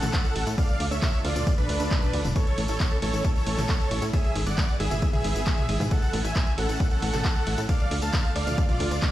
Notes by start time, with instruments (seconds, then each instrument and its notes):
Already playing: supersaw synth C#4 E4 A4 F#5
0.02 analog synth bass A1, clap, closed hi-hat, mid tom, tambourine
0.13 kick, clap, closed hi-hat, tambourine
0.25 closed hi-hat, tambourine
0.36 analog synth bass A1, open hi-hat, ride
0.47 analog synth bass A2, closed hi-hat, tambourine
0.58 supersaw synth D4 F4 A4 D5 F5, kick, closed hi-hat, tambourine
0.69 closed hi-hat, tambourine
0.80 analog synth bass D2, open hi-hat, ride
0.91 analog synth bass D2, supersaw synth C#5 E5, closed hi-hat, tambourine
1.02 kick, clap, closed hi-hat, tambourine
1.13 closed hi-hat, tambourine
1.24 analog synth bass D2, supersaw synth F4 D5, open hi-hat, ride
1.36 analog synth bass D2, closed hi-hat, mid tom, tambourine
1.47 kick, closed hi-hat, tambourine
1.58 supersaw synth D4 B4, closed hi-hat, mid tom, tambourine
1.69 analog synth bass D2, open hi-hat, ride
1.80 analog synth bass D2, closed hi-hat, tambourine
1.91 kick, clap, closed hi-hat, tambourine
2.02 closed hi-hat, mid tom, tambourine
2.13 analog synth bass D2, open hi-hat, ride
2.25 analog synth bass D1, closed hi-hat, mid tom, tambourine
2.36 supersaw synth C#4 E4 A4 C#5, kick, closed hi-hat, tambourine
2.47 closed hi-hat, tambourine
2.58 analog synth bass A1, open hi-hat, ride
2.68 analog synth bass A1, supersaw synth A4 C#5, closed hi-hat, tambourine
2.80 kick, clap, closed hi-hat, tambourine
2.91 closed hi-hat, tambourine
3.02 analog synth bass A1, supersaw synth A4 C#5, open hi-hat, ride
3.13 analog synth bass A1, closed hi-hat, tambourine
3.24 kick, closed hi-hat, tambourine
3.35 supersaw synth A4 C#5, closed hi-hat, tambourine
3.47 analog synth bass A1, open hi-hat, ride
3.58 analog synth bass A1, clap, closed hi-hat, mid tom, tambourine
3.69 kick, clap, closed hi-hat, tambourine
3.80 closed hi-hat, tambourine
3.91 analog synth bass A1, open hi-hat, ride
4.02 analog synth bass A2, closed hi-hat, tambourine
4.13 supersaw synth B3 G#4 E5, kick, closed hi-hat, tambourine
4.24 closed hi-hat, tambourine
4.36 analog synth bass G#1, open hi-hat, ride
4.47 analog synth bass G#1, supersaw synth D5 F#5, closed hi-hat, tambourine
4.58 kick, clap, closed hi-hat, tambourine
4.68 closed hi-hat, tambourine
4.80 analog synth bass G#1, supersaw synth G#4 E5, open hi-hat, ride
4.91 analog synth bass G#1, closed hi-hat, mid tom, tambourine
5.02 kick, closed hi-hat, tambourine
5.13 supersaw synth G#4 E5, closed hi-hat, mid tom, tambourine
5.24 analog synth bass G#1, open hi-hat, ride
5.35 analog synth bass G#1, closed hi-hat, tambourine
5.46 kick, clap, closed hi-hat, tambourine
5.58 closed hi-hat, mid tom, tambourine
5.69 analog synth bass G#1, open hi-hat, ride
5.80 analog synth bass G#2, closed hi-hat, mid tom, tambourine
5.91 supersaw synth C#4 A4 F#5, kick, closed hi-hat, tambourine
6.02 closed hi-hat, tambourine
6.13 analog synth bass A1, open hi-hat, ride
6.25 analog synth bass A1, supersaw synth E5 G#5, closed hi-hat, tambourine
6.35 kick, clap, closed hi-hat, tambourine
6.47 closed hi-hat, tambourine
6.58 analog synth bass A1, supersaw synth A4 F#5, open hi-hat, ride
6.69 analog synth bass A1, closed hi-hat, tambourine
6.80 kick, closed hi-hat, tambourine
6.90 supersaw synth A4 F#5, closed hi-hat, tambourine
7.02 analog synth bass A1, open hi-hat, ride
7.13 analog synth bass A1, clap, closed hi-hat, mid tom, tambourine
7.25 kick, clap, closed hi-hat, tambourine
7.36 closed hi-hat, tambourine
7.47 analog synth bass A1, open hi-hat, ride
7.58 analog synth bass A2, closed hi-hat, tambourine
7.69 supersaw synth D4 F4 D5 F5, kick, closed hi-hat, tambourine
7.80 closed hi-hat, tambourine
7.91 analog synth bass D2, open hi-hat, ride
8.02 analog synth bass D2, supersaw synth F5 A5, closed hi-hat, tambourine
8.13 kick, clap, closed hi-hat, tambourine
8.25 closed hi-hat, tambourine
8.36 analog synth bass D2, supersaw synth D5 F5, open hi-hat, ride
8.47 analog synth bass D2, closed hi-hat, mid tom, tambourine
8.58 kick, closed hi-hat, tambourine
8.69 supersaw synth F4 D5, closed hi-hat, mid tom, tambourine
8.80 analog synth bass D2, open hi-hat, ride
8.91 analog synth bass D2, closed hi-hat, tambourine
9.02 kick, snare, clap, closed hi-hat, tambourine